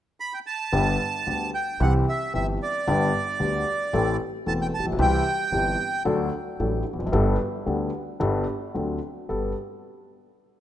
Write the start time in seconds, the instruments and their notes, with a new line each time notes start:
0.20 bandoneon B5
0.33 bandoneon G5
0.46 bandoneon A5
0.72 grand piano G1 G2 D3 G3 B3 G4, upright bass G1
1.27 grand piano D2 D3 G3 B3 G4, upright bass D2
1.54 bandoneon G5
1.80 grand piano C2 C3 E3 G3 C4 G4, upright bass C2, bandoneon F#5
2.09 bandoneon E5
2.34 grand piano G1 G2 E3 G3 C4 G4, upright bass G1, bandoneon E5
2.62 bandoneon D5
2.87 upright bass G1, grand piano G1 G2 D3 G3 B3 G4
3.40 grand piano D2 D3 G3 B3 G4, upright bass D2
3.93 grand piano A1 A2 E3 A3 C4 A4, upright bass A1
4.46 grand piano E1 E2 E3 A3 C4 A4, upright bass E1, bandoneon A5
4.62 bandoneon G5
4.74 bandoneon A5
4.79 upright bass A1, grand piano A1
4.85 upright bass A#1, grand piano A#1
4.92 upright bass B1, grand piano B1
4.99 upright bass C2, grand piano C2 C3 E3 G3 C4 G4, bandoneon G5
5.52 upright bass G1, grand piano G1 G2 E3 G3 C4 G4
6.05 upright bass D2, grand piano D2 D3 F#3 A3 D4 A4
6.60 upright bass A1, grand piano A1 A2 F#3 A3 D4 A4
6.93 upright bass E1, grand piano E2
6.99 upright bass F1, grand piano F2
7.06 upright bass F#1, grand piano F#2
7.12 grand piano G1 G2 G3 B3 D4 A4, upright bass G1
7.66 grand piano D2 D3 G3 B3 D4 A4, upright bass D2
8.20 grand piano G1 G2 G3 B3 D4 A4, upright bass G1
8.74 grand piano D2 D3 F#3 C4 D4 A4, upright bass D2
9.29 upright bass G1, grand piano G2 B3 G4 A4